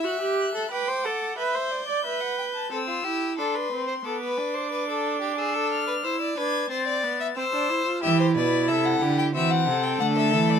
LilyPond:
<<
  \new Staff \with { instrumentName = "Violin" } { \time 4/4 \key g \mixolydian \tempo 4 = 90 fis'''4 d'''4 g'''2 | \key a \minor e'''4 c'''4 d'''2 | e'''8 f'''8 e'''8 gis'''8 a'''4 e'''4 | e''16 c''16 d''8 e''16 fis''8 g''16 e''16 fis''8 g''16 fis''16 e''8 d''16 | }
  \new Staff \with { instrumentName = "Violin" } { \time 4/4 \key g \mixolydian e''4 g''8 fis''8 e''8 d''8 e''16 fis''16 g''16 a''16 | \key a \minor a'16 f'16 g'8 a'16 b'8 c''16 a'16 b'8 c''16 b'16 a'8 g'16 | gis'16 a'8 b'16 c''16 d''16 b'8 c''16 d''8 e''16 c''4 | g'8 b'8 a'8 g'8 fis'8 a'4. | }
  \new Staff \with { instrumentName = "Viola" } { \time 4/4 \key g \mixolydian fis'16 g'8 a'16 b'16 c''16 a'8 b'16 c''8 d''16 b'4 | \key a \minor c'8 e'8 d'8 c'8 b8 d'4.~ | d'4 e'8 d'8 c'8 b8 c'16 d'16 e'16 f'16 | e'2 c'4 a4 | }
  \new Staff \with { instrumentName = "Cello" } { \clef bass \time 4/4 \key g \mixolydian r1 | \key a \minor r1 | r1 | e8 b,8 c8 d8 e8 c8 d8 e8 | }
>>